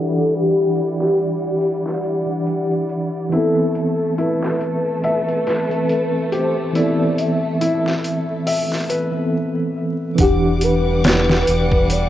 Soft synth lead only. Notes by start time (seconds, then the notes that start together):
Already playing: A4
0.35 G4
3.34 A4
4.20 B4
5.05 B4
6.33 C5
6.76 D5
7.19 E5
10.20 G4
10.63 B4
11.05 B4
11.91 D5